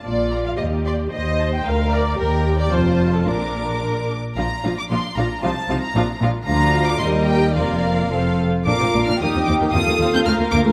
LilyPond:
<<
  \new Staff \with { instrumentName = "Violin section" } { \time 2/4 \key bes \major \tempo 4 = 112 r8 bes''8 r8 c'''8 | r8 a''8 r8 bes''8 | g''4 a''4 | d'''4. r8 |
bes''8. d'''16 c'''8 bes''8 | a''8. bes''8. r8 | bes''8. d'''16 c'''8 g''8 | f''4. r8 |
d'''8. f'''16 ees'''8 d'''8 | ees'''8. g'''16 f'''8 d'''8 | }
  \new Staff \with { instrumentName = "Violin section" } { \time 2/4 \key bes \major << { d''8. f''16 ees''8 d''8 | ees''8. g''16 f''8 d''8 | bes'8. d''16 c''8. a'16 | bes'4. r8 |
f''8 f''8 f''8 f''8 | f''8 f''8 f''8 f''8 | f''4 ees''4 | d''4 f''8 r8 |
f''4 g''4 | f''2 | } \\ { r2 | r2 | r2 | r2 |
f'8 f'8 f'8 f'8 | f'8 f'8 f'8 f'8 | f'4 bes'4 | bes'4 a'8 r8 |
bes'4 g'4 | a'4 bes'4 | } >> }
  \new Staff \with { instrumentName = "Viola section" } { \time 2/4 \key bes \major << { f'4 g'4 | c''4 bes'4 | g'4 f'4 | d'4. r8 |
d'8 d'8 d'8 d'8 | ees'8 ees'8 d'8 d'8 | d'4 g'4 | f'4 f'8 r8 |
f'4 ees'4 | f'2 | } \\ { r2 | r2 | r2 | r2 |
f8 f8 f8 f8 | f8 f8 f8 f8 | f4 g4 | bes4 c'8. r16 |
d'16 c'16 d'16 d'16 bes16 c'16 c'16 bes16 | c'16 bes16 c'16 c'16 a16 bes16 bes16 a16 | } >> }
  \new Staff \with { instrumentName = "Cello section" } { \clef bass \time 2/4 \key bes \major bes,8. r16 ees,8. r16 | ees,8. r16 d,8. r16 | ees,4 f,4 | bes,4.~ bes,16 r16 |
bes,8 bes,8 bes,8 bes,8 | c8 c8 bes,8 bes,8 | d,4 ees,4 | f,4 f,8. r16 |
bes,16 bes,16 bes,16 bes,16 ees,16 ees,16 ees,16 ees,16 | ees,16 ees,16 ees,16 ees,16 d,16 d,16 d,16 d,16 | }
  \new Staff \with { instrumentName = "Double bass section" } { \clef bass \time 2/4 \key bes \major bes,,4 ees,4 | ees,4 d,4 | ees,4 f,,4 | bes,,4. r8 |
bes,,8 bes,,8 bes,,8 bes,,8 | c,8 c,8 bes,,8 bes,,8 | d,4 ees,4 | f,,4 f,,8 r8 |
bes,,16 r16 bes,,16 r16 ees,16 r16 ees,16 r16 | ees,16 r16 ees,16 r16 d,16 r16 d,16 r16 | }
>>